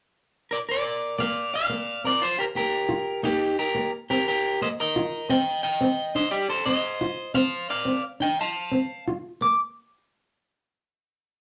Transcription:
0.51 A#4 D5
0.69 A#4 D5
1.18 A#3 D5 F5
1.54 D5 F5
1.70 A#3
2.04 C4 A#4 D5
2.22 F4 C5
2.39 G4 A#4
2.55 A#3 G4 A#4
2.89 F4
3.23 A#3 D#4 G4
3.59 G4 A#4
3.75 A#3
4.10 C4 G4 A#4
4.28 G4 A#4
4.62 A#3 C5 D#5
4.80 A#4 D#5
4.96 F4
5.30 C4 D#5 G5
5.63 D#5 G5
5.81 C4
6.15 D4 C5 D#5
6.31 G4 D5
6.50 A4 C5
6.66 C4 C5 D#5
7.01 F4
7.34 C4 C5 F5
7.70 D5 F5
7.85 C4
8.20 D4 D#5 G5
8.41 F5 A5
8.72 C4
9.08 F4
9.41 A#3 D6

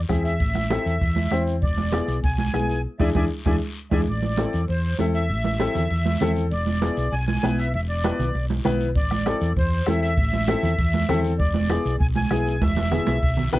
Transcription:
0.09 E2 C4 E4 G#4 E5, bombo low, bombo rim, high conga, short guiro
0.25 E5, high conga, short guiro
0.40 A1, bombo low, long guiro
0.55 bombo rim, high conga
0.70 C4 E4 A4, bombo rim, high conga, short guiro
0.86 E2, short guiro
1.01 E2, bombo low, high conga, long guiro
1.16 high conga
1.31 E2 C4 E4 C5, bombo rim, high conga, short guiro
1.47 high conga, short guiro
1.62 E1 D5, bombo low, long guiro
1.78 high conga
1.92 B3 E4 G#4, bombo rim, high conga, short guiro
2.08 B1, short guiro
2.23 B1 G#5, bombo low, high conga, long guiro
2.38 G#5, high conga
2.54 B1 B3 E4 G#4, bombo rim, high conga, short guiro
2.69 high conga, short guiro
2.99 E2 D4 E4 G#4 D5 E5 G#5, bombo low, high conga, long guiro
3.15 E2 D4 E4 G#4 D5 E5 G#5, bombo low, high conga, long guiro
3.46 E2 D4 E4 G#4 D5 E5 G#5, bombo low, high conga, long guiro
3.91 E2 D4 E4 G#4 D5 E5 G#5, bombo low, high conga, long guiro
4.07 A1 D5, long guiro
4.22 high conga
4.37 C4 E4 A4, high conga, short guiro
4.53 E2, short guiro
4.68 E2 C5, high conga, long guiro
4.99 E2 C4 E4 A4 E5, high conga, short guiro
5.14 E5, high conga, short guiro
5.29 A1, long guiro
5.44 high conga
5.60 C4 E4 A4, high conga, short guiro
5.75 E2, low conga, short guiro
5.90 E2, high conga, long guiro
6.06 high conga
6.21 E2 C4 E4 A4, high conga, low conga, short guiro
6.36 high conga, short guiro
6.51 E1 D5, long guiro
6.67 high conga
6.82 B3 E4 G#4, high conga, short guiro
6.97 B1, short guiro
7.12 B1 G#5, high conga, long guiro
7.27 G#5, high conga
7.43 B1 B3 E4 B4, high conga, short guiro
7.58 E5, high conga, short guiro
7.74 E1 E5, long guiro
7.89 D5
8.04 B3 E4 B4, high conga, short guiro
8.19 B1, low conga, short guiro
8.35 B1, high conga, long guiro
8.50 high conga
8.65 B1 B3 E4 B4, high conga, low conga, short guiro
8.80 high conga, short guiro
8.95 A1 D5, bombo low, long guiro
9.11 bombo rim, high conga
9.26 C4 E4 A4, bombo rim, high conga, short guiro
9.41 E2, short guiro
9.56 E2 C5, bombo low, high conga, long guiro
9.87 E2 C4 E4 A4 E5, bombo rim, high conga, short guiro
10.02 E5, high conga, short guiro
10.17 A1, bombo low, long guiro
10.33 high conga
10.48 C4 E4 A4, bombo rim, high conga, short guiro
10.63 E2, low conga, short guiro
10.78 E2, bombo low, high conga, long guiro
10.94 high conga
11.09 E2 C4 E4 A4, bombo rim, high conga, low conga, short guiro
11.24 high conga, short guiro
11.39 E1 D5, bombo low, long guiro
11.54 high conga
11.69 B3 E4 G#4, bombo rim, high conga, short guiro
11.85 B1, short guiro
12.00 B1 G#5, bombo low, high conga, long guiro
12.16 G#5, high conga
12.31 B1 B3 E4 G#4, bombo rim, high conga, short guiro
12.47 high conga, short guiro
12.61 E1 E5, bombo low, high conga, long guiro
12.77 high conga
12.91 B3 E4 G#4, bombo rim, low conga, short guiro
13.07 B1, high conga, short guiro
13.23 B1, bombo low, long guiro
13.37 low conga
13.53 B1 B3 E4 B4, bombo rim, low conga, short guiro

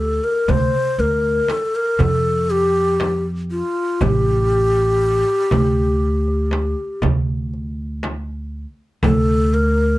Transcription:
Already playing: D2
0.00 A4
0.24 A#4
0.48 D2 C5, frame drum, darbuka dum
0.99 D2 A#4
1.24 darbuka ka
1.48 A4, darbuka tek, frame drum
1.75 A#4
1.99 F2 A4, frame drum, darbuka dum
2.50 G4, darbuka ka
3.00 darbuka tek, frame drum
3.51 F4
4.01 A1 G4, frame drum, darbuka dum
4.52 darbuka ka
5.51 D2, frame drum, darbuka dum
6.28 darbuka ka
6.51 darbuka tek, frame drum
7.02 D2, frame drum, darbuka dum
7.54 darbuka ka
8.03 darbuka tek, frame drum
9.03 D2 A4, frame drum, darbuka dum
9.54 A#4, darbuka ka

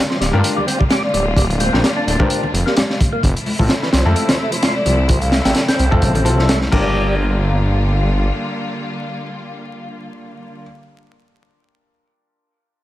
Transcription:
Already playing: D3 G3 A#3 F4
0.10 F3, snare
0.20 D1 G3, snare, closed hi-hat
0.33 G2 D4 F4 G4 A#4, high conga, low conga
0.44 closed hi-hat
0.57 G3, low conga
0.67 C4, closed hi-hat
0.80 G3, kick
0.90 G4, snare, closed hi-hat, high conga
1.04 D5
1.14 D1 G3 D5, closed hi-hat
1.37 G3, kick, closed hi-hat
1.50 closed hi-hat
1.60 C4, closed hi-hat, high conga
1.73 A#1 D4 F4 G4 A#4, snare, low conga
1.83 G3, snare, closed hi-hat
1.96 D4
2.07 D1, closed hi-hat
2.19 G2 D4 F4 G4 A#4 C5, kick, high conga, low conga
2.30 C5, closed hi-hat
2.43 D4, low conga
2.53 F1, closed hi-hat
2.66 A#3 G4, snare
2.77 G3 G4, snare, closed hi-hat, high conga
2.90 snare
3.01 kick, closed hi-hat
3.13 A#3
3.23 F1 C3 F3 A3 E4, kick, closed hi-hat
3.37 closed hi-hat
3.46 open hi-hat, high conga
3.59 A1 F3 C4 E4 F4 A4, kick, low conga
3.69 F3, snare, closed hi-hat
3.83 E3, snare
3.93 C2 F3, snare, closed hi-hat
4.05 F2 C4 E4 F4 A4, high conga, low conga
4.16 closed hi-hat
4.29 F3, snare, closed hi-hat, low conga
4.39 A3
4.52 F3, closed hi-hat
4.63 F4, snare, closed hi-hat, high conga
4.75 D5
4.85 C2 F3 D5, closed hi-hat
5.09 F3, kick, closed hi-hat
5.21 F5, closed hi-hat
5.32 A3, snare, closed hi-hat, high conga
5.45 A1 C4 E4 F4 A4 G5, snare, closed hi-hat, low conga
5.55 F3, snare, closed hi-hat
5.68 C4, snare, closed hi-hat
5.79 C2, closed hi-hat
5.91 F2 C4 E4 F4 A4, kick, high conga, low conga
6.02 A1, kick, closed hi-hat
6.15 C4, closed hi-hat, low conga
6.25 C2 F3 C4 E4 F4 A4, closed hi-hat
6.38 F3, snare
6.49 A3, snare, closed hi-hat, high conga
6.62 snare
6.72 G1 D3 G3 A#3 D4 F4 G4 A#4, kick, crash

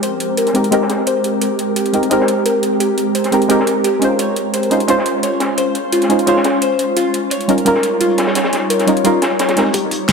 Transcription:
Already playing: G#3 C4 G4 A#4
0.03 C5, closed hi-hat
0.20 closed hi-hat
0.37 A#4, closed hi-hat
0.47 snare, closed hi-hat
0.53 G#3 C4 D#4 G4 A#4, closed hi-hat
0.64 closed hi-hat
0.71 G#3 C4 D#4 G4 A#4, closed hi-hat
0.81 snare
0.89 snare, closed hi-hat
0.98 closed hi-hat
1.06 C5, closed hi-hat
1.16 closed hi-hat
1.24 closed hi-hat
1.41 A#4, closed hi-hat
1.59 closed hi-hat
1.76 G4, closed hi-hat
1.86 closed hi-hat
1.92 G#3 C4 D#4 G4 A#4, closed hi-hat
2.03 closed hi-hat
2.10 G#3 C4 D#4 G4 A#4 C5, closed hi-hat
2.20 snare
2.28 closed hi-hat
2.46 A#4, closed hi-hat
2.55 closed hi-hat
2.63 closed hi-hat
2.73 closed hi-hat
2.80 G4, closed hi-hat
2.97 closed hi-hat
3.15 C5, closed hi-hat
3.24 snare, closed hi-hat
3.31 G#3 C4 D#4 G4 A#4, closed hi-hat
3.42 closed hi-hat
3.48 G#3 C4 D#4 G4 A#4, closed hi-hat
3.60 snare
3.67 closed hi-hat
3.84 G4, closed hi-hat
3.93 closed hi-hat
3.99 G#3 C#4 D#4 F4, closed hi-hat
4.04 C5
4.19 C#4 F4 C5 C#5, closed hi-hat
4.36 closed hi-hat
4.54 C5, closed hi-hat
4.63 closed hi-hat
4.70 G#3 C#4 D#4 F4 C5, closed hi-hat
4.80 closed hi-hat
4.87 G#3 C#4 D#4 F4 C5, closed hi-hat
4.98 snare
5.05 closed hi-hat
5.23 C#5, closed hi-hat
5.33 closed hi-hat
5.40 snare, closed hi-hat
5.49 closed hi-hat
5.57 C5, closed hi-hat
5.75 closed hi-hat
5.92 F4, closed hi-hat
6.02 snare, closed hi-hat
6.09 G#3 C#4 D#4 F4 C5, closed hi-hat
6.19 closed hi-hat
6.26 G#3 C#4 D#4 F4 C5 C#5, closed hi-hat
6.36 snare
6.44 snare, closed hi-hat
6.54 closed hi-hat
6.61 C5, closed hi-hat
6.72 closed hi-hat
6.79 closed hi-hat
6.96 G3 D#4 F4 C#5, closed hi-hat
7.14 closed hi-hat
7.30 C#5, closed hi-hat
7.41 closed hi-hat
7.47 G3 C#4 D#4 F4 A#4, closed hi-hat
7.58 closed hi-hat
7.65 G3 C#4 D#4 F4 A#4, closed hi-hat
7.74 snare
7.83 closed hi-hat
8.00 F4, closed hi-hat
8.10 closed hi-hat
8.18 snare, closed hi-hat
8.27 snare, closed hi-hat
8.35 C#5, snare, closed hi-hat
8.44 snare, closed hi-hat
8.53 snare, closed hi-hat
8.70 A#4, closed hi-hat
8.79 snare, closed hi-hat
8.86 G3 C#4 D#4 F4 A#4, closed hi-hat
8.97 closed hi-hat
9.04 G3 C#4 D#4 F4 A#4, closed hi-hat
9.22 snare, closed hi-hat
9.31 closed hi-hat
9.39 C#5, snare, closed hi-hat
9.49 snare, closed hi-hat
9.56 G#3 C4 D#4 G4 A#4, snare, closed hi-hat
9.66 closed hi-hat
9.74 A#3 G4 G#4 C5, kick, closed hi-hat
9.91 kick, closed hi-hat
10.08 C5, snare, closed hi-hat

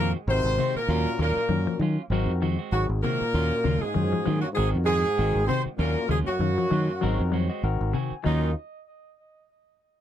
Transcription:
Already playing: F2 D#3 G#3 C4 F#4 A#4
0.00 A#2 D#3 A#3
0.27 G#1 C3 C4 D#4 F#4 A#4 C5
0.44 G#1
0.58 C3 D#3 G#3 C4 F#4
0.76 A#2 A#3 A#4, muted fingered electric bass stroke
0.88 D#2 F#3 A#3 C#4 F4 F#4 A#4
1.19 D#2 A#2 F#3 A#3 C#4 F4 A#4, muted clean electric guitar stroke
1.36 muted fingered electric bass stroke
1.49 F#2 D#3 C#4 F4 F#4 A#4
1.67 F3
1.79 D#3 F#3 C#4 F4, muted clean electric guitar stroke
2.10 G#1 F#3 G#3 C4 D#4 F#4 A#4, muted clean electric guitar stroke
2.26 F2
2.42 D#3 G#3 C4 F#4, muted clean electric guitar stroke
2.59 G#3 C4 F#4
2.72 G#1 F#2 F#3 C4 D#4 F#4 G#4
2.89 G#1
3.03 A#2 C3 D#3 G#3 A#3 C4 F#4 A#4
3.21 muted fingered electric bass stroke
3.34 D#2 A#3 C#4 F4 F#4 A#4, muted clean electric guitar stroke
3.64 D#2 C#3 F#3 A#3 C#4 F4
3.79 G#2 G#3 G#4, muted fingered electric bass stroke
3.94 F#2 D#3 C#4 F4 F#4 C5
4.13 F3
4.25 D#3 F#3 A#3 C#4 F4
4.40 F#2 F#3 F#4
4.52 G#2 D#3 G#3 G#4
4.57 G#1 G#3 C4 D#4 F#4 A#4, muted clean electric guitar stroke
4.75 F2
4.84 G#2 D#3 G#3 G#4
4.88 F#4
5.17 G#1 D#3 G#3 C4 D#4 F#4 A#4
5.35 G#1
5.45 C3 D#3 G#3 C4 F#4 C5
5.66 muted fingered electric bass stroke
5.75 A#2 F#3 A#3
5.79 D#2 A#3 C#4 F4 F#4 A#4
6.05 D#2 G#2 C#3 G#3
6.09 F#3 A#3 C#4 F4 G#4
6.24 F#2 F#3 F#4, muted fingered electric bass stroke
6.39 F#2 D#3 C#4 F#4 A#4 F5
6.58 F3
6.71 D#3 F#3 A#3 C#4 F4
7.01 G#1 D#3 F#3 G#3 C4 D#4 F#4 A#4
7.19 F2
7.32 D#3 F#3 G#3 C4 F#4 C#5
7.49 G#3 C4 F#4 D#5
7.63 G#1 C4 D#4 F#4 A#4 F#5
7.81 G#1
7.93 C3 D#3 C4 F#4 G#5, muted clean electric guitar stroke
8.11 muted fingered electric bass stroke
8.23 D#2 D#3 F#3 A#3 C#4 D#4 F4 F#4 A#4 D#5

